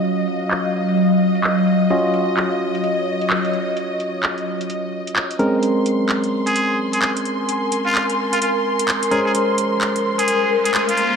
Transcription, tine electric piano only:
X:1
M:4/4
L:1/8
Q:"Swing 16ths" 1/4=129
K:Ebdor
V:1 name="Tine electric piano"
[DFGe]8 | [DFGe]8- | [DFGe]6- [DFGe] [A,CDB]- | [A,CDB]8- |
[A,CDB]6- [A,CDB] [A,DBc]- | [A,DBc]8 |]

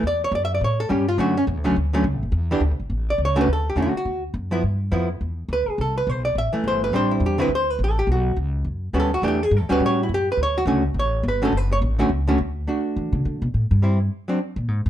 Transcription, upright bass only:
X:1
M:4/4
L:1/8
Q:"Swing" 1/4=209
K:D
V:1 name="Upright bass" clef=bass
E,,2 F,,2 A,,2 G,,2 | F,,2 (3E,, D,, C,, D,,2 (3C,, A,,, F,,, | E,,2 (3D,, B,,, G,,, A,,,2 C,,2 | D,,2 E,, z D,,2 F,,2 |
G,,2 =F,,2 E,,2 D,, z | =C,,2 B,,,2 A,,, z G,,,2 | A,,,2 E,,2 D,,2 A,,,2 | B,,,2 C,,2 F,,2 D,,2 |
E,,2 (3G,, E,, D,, A,,2 F,,2 | D,,2 C,,2 A,,,2 G,,,2 | F,,,2 A,,,2 C,,2 D,,2 | z2 E, C, D, B,, A,, G,,- |
G,,2 z3 _B,, ^G,, =G,, |]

